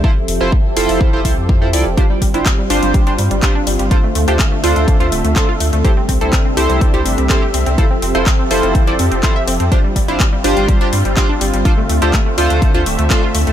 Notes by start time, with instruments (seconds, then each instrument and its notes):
Already playing: supersaw synth E5
0.04 supersaw synth F3 C4 G4 A4, analog polysynth E4 F4 A4 C5, kick
0.28 sub bass F1, open hi-hat
0.41 sub bass F1, analog polysynth E4 F4 A4 C5
0.52 kick
0.77 sub bass F1, analog polysynth E4 F4 A4 C5, open hi-hat
0.89 sub bass F1, open hi-hat
1.01 kick
1.13 sub bass F1, analog polysynth E4 F4 A4 C5
1.25 sub bass C2, analog polysynth E4 F4 A4 C5, kick, open hi-hat
1.37 sub bass F2
1.49 kick
1.62 analog polysynth E4 F4 A4 C5
1.73 sub bass C2, analog polysynth E4 F4 A4 D5, open hi-hat
1.86 sub bass F1
1.97 supersaw synth G3 F4, synth pluck D4, analog polysynth D4 F4 G4 C5, kick, closed hi-hat
2.10 synth pluck G3
2.22 sub bass G1, synth pluck G3, kick, open hi-hat
2.34 sub bass G1, analog polysynth D4 F4 G4 C5, synth pluck E4, closed hi-hat
2.46 synth pluck G3, kick, clap, closed hi-hat
2.58 synth pluck G3
2.70 sub bass G1, analog polysynth D4 F4 G4 C5, synth pluck D4, open hi-hat
2.83 sub bass G1, synth pluck G3, closed hi-hat
2.94 synth pluck G3, kick, closed hi-hat
3.07 sub bass G1, synth pluck D4, analog polysynth D4 F4 G4 C5, closed hi-hat
3.18 sub bass G2, synth pluck G3, open hi-hat
3.31 sub bass G1, synth pluck G3, closed hi-hat
3.43 synth pluck G3, analog polysynth D4 F4 G4 C5, kick, clap, closed hi-hat
3.55 synth pluck D4
3.67 sub bass G1, synth pluck G3, open hi-hat
3.79 sub bass G1, synth pluck G3, closed hi-hat
3.91 supersaw synth D3 A3 E5, analog polysynth D4 F4 A4 C5, synth pluck F4, kick, closed hi-hat
4.04 synth pluck A3
4.15 sub bass D2, synth pluck A3, open hi-hat
4.28 sub bass D2, analog polysynth D4 F4 A4 C5, synth pluck G4, closed hi-hat
4.39 synth pluck A3, kick, clap, closed hi-hat
4.52 synth pluck A3
4.64 sub bass D2, analog polysynth D4 F4 A4 C5, synth pluck F4, open hi-hat
4.76 sub bass D2, synth pluck A3, closed hi-hat
4.88 synth pluck A3, kick, closed hi-hat
5.00 sub bass D2, analog polysynth D4 F4 A4 C5, synth pluck F4, closed hi-hat
5.12 sub bass D1, synth pluck A3, open hi-hat
5.24 sub bass D2, synth pluck A3, closed hi-hat
5.36 synth pluck A3, analog polysynth D4 F4 A4 C5, kick, clap, closed hi-hat
5.49 synth pluck F4
5.60 sub bass D2, synth pluck A3, open hi-hat
5.73 sub bass D2, synth pluck A3, closed hi-hat
5.84 supersaw synth C3 G3 D4 E5, analog polysynth E4 G4 A4 C5, synth pluck G4, kick, closed hi-hat
5.97 synth pluck C4
6.09 sub bass C2, synth pluck C4, kick, open hi-hat
6.21 sub bass C2, analog polysynth E4 G4 A4 C5, synth pluck A4, closed hi-hat
6.33 synth pluck C4, kick, clap, closed hi-hat
6.45 synth pluck C4
6.57 sub bass C2, analog polysynth E4 G4 A4 C5, synth pluck G4, open hi-hat
6.69 sub bass C2, synth pluck C4, closed hi-hat
6.81 synth pluck C4, kick, closed hi-hat
6.94 sub bass C2, analog polysynth E4 G4 A4 C5, synth pluck G4, closed hi-hat
7.05 sub bass G1, synth pluck C4, open hi-hat
7.18 sub bass C2, synth pluck C4, closed hi-hat
7.30 synth pluck C4, analog polysynth E4 G4 A4 C5, kick, clap, closed hi-hat
7.42 synth pluck G4
7.54 sub bass C2, synth pluck C4, open hi-hat
7.66 sub bass C2, synth pluck C4, closed hi-hat
7.78 supersaw synth F3 C4 G4 A4, analog polysynth E4 F4 A4 C5, synth pluck A4, kick, closed hi-hat
7.91 synth pluck C4
8.02 sub bass F1, synth pluck C4, open hi-hat
8.15 sub bass F1, analog polysynth E4 F4 A4 C5, synth pluck C5, closed hi-hat
8.26 synth pluck C4, kick, clap, closed hi-hat
8.39 synth pluck C4
8.51 sub bass F1, analog polysynth E4 F4 A4 C5, synth pluck C5, open hi-hat
8.63 sub bass F1, synth pluck C4, closed hi-hat
8.75 synth pluck C4, kick, closed hi-hat
8.87 sub bass F1, analog polysynth E4 F4 A4 C5, synth pluck D5, closed hi-hat
8.99 sub bass F2, synth pluck C4, open hi-hat
9.11 sub bass F1, synth pluck C4, closed hi-hat
9.23 synth pluck C4, analog polysynth E4 F4 A4 C5, kick, clap, closed hi-hat
9.36 synth pluck E5
9.47 sub bass F1, synth pluck C4, open hi-hat
9.60 sub bass F2, synth pluck C4, closed hi-hat
9.72 supersaw synth G3 C4 F4, synth pluck D4, analog polysynth D4 F4 G4 C5, kick, closed hi-hat
9.84 synth pluck G3
9.96 sub bass G1, synth pluck G3, kick, open hi-hat
10.08 sub bass G1, analog polysynth D4 F4 G4 C5, synth pluck E4, closed hi-hat
10.20 synth pluck G3, kick, clap, closed hi-hat
10.33 synth pluck G3
10.44 sub bass G1, analog polysynth D4 F4 G4 C5, synth pluck D4, open hi-hat
10.57 sub bass G1, synth pluck G3, closed hi-hat
10.68 synth pluck G3, kick, closed hi-hat
10.81 sub bass G1, analog polysynth D4 F4 G4 C5, synth pluck D4, closed hi-hat
10.93 sub bass G2, synth pluck G3, open hi-hat
11.05 sub bass G1, synth pluck G3, closed hi-hat
11.17 synth pluck G3, analog polysynth D4 F4 G4 C5, kick, clap, closed hi-hat
11.29 synth pluck D4
11.41 sub bass G1, synth pluck G3, open hi-hat
11.53 sub bass G1, synth pluck G3, closed hi-hat
11.65 supersaw synth D3 A3 E5, analog polysynth D4 F4 A4 C5, synth pluck F4, kick, closed hi-hat
11.78 synth pluck A3
11.89 sub bass D2, synth pluck A3, open hi-hat
12.02 sub bass D2, analog polysynth D4 F4 A4 C5, synth pluck G4, closed hi-hat
12.13 synth pluck A3, kick, clap, closed hi-hat
12.26 synth pluck A3
12.38 sub bass D2, analog polysynth D4 F4 A4 C5, synth pluck F4, open hi-hat
12.50 sub bass D2, synth pluck A3, closed hi-hat
12.62 synth pluck A3, kick, closed hi-hat
12.74 sub bass D2, analog polysynth D4 F4 A4 C5, synth pluck F4, closed hi-hat
12.86 sub bass D1, synth pluck A3, open hi-hat
12.99 sub bass D2, synth pluck A3, closed hi-hat
13.10 synth pluck A3, analog polysynth D4 F4 A4 C5, kick, clap, closed hi-hat
13.23 synth pluck F4
13.35 sub bass D2, synth pluck A3, open hi-hat
13.47 sub bass D2, synth pluck A3, closed hi-hat